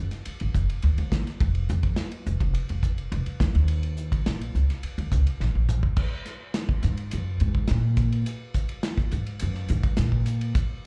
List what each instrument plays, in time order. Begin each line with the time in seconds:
0.00 upright bass F#1
0.11 snare, ride
0.25 muted upright bass stroke, ride
0.40 upright bass G#1, ride
0.55 upright bass F#1, kick, hi-hat pedal
0.70 ride
0.82 upright bass D#2, ride
0.98 upright bass D#2, ride
1.12 kick, snare, hi-hat pedal
1.27 snare, ride
1.40 upright bass F1, kick, ride
1.55 ride
1.69 upright bass F2, hi-hat pedal
1.83 kick, ride
1.96 snare, ride
2.12 ride
2.26 upright bass F1, hi-hat pedal
2.40 upright bass F1, kick, ride
2.54 ride
2.69 upright bass F1, ride
2.83 kick, hi-hat pedal
2.98 ride
3.12 upright bass F1, ride
3.26 muted upright bass stroke, ride
3.40 upright bass D#2, kick, snare, hi-hat pedal
3.55 upright bass D#2, snare, ride
3.68 ride
3.83 ride
3.97 hi-hat pedal
4.12 kick, ride
4.26 upright bass A#1, snare, ride
4.41 ride
4.55 upright bass C#2, hi-hat pedal
4.70 snare, ride
4.83 muted upright bass stroke, ride
4.98 upright bass D#2, ride
5.12 upright bass C#2, kick, hi-hat pedal
5.27 ride
5.40 upright bass A#1, snare
5.55 upright bass A#1
5.69 hi-hat pedal, mid tom
5.83 kick
5.96 kick, crash
6.26 snare, hi-hat pedal, ride
6.54 snare, hi-hat pedal, ride
6.69 kick
6.83 upright bass G#2, snare, hi-hat pedal, ride
6.97 ride
7.11 upright bass F#2, hi-hat pedal, ride
7.40 upright bass G#2, hi-hat pedal, ride
7.55 kick
7.68 upright bass A#2, snare, hi-hat pedal, ride
7.97 kick, hi-hat pedal, ride
8.12 ride
8.26 hi-hat pedal, ride
8.54 kick, hi-hat pedal, ride
8.69 ride
8.83 snare, hi-hat pedal, ride
8.97 kick, snare
9.11 upright bass G#2, hi-hat pedal, ride
9.27 ride
9.40 upright bass F#2, hi-hat pedal, ride
9.55 snare
9.68 upright bass G#2, hi-hat pedal, ride
9.83 kick, ride
9.97 upright bass A#2, snare, hi-hat pedal, ride
10.12 kick
10.26 hi-hat pedal, ride
10.41 ride
10.55 kick, hi-hat pedal, ride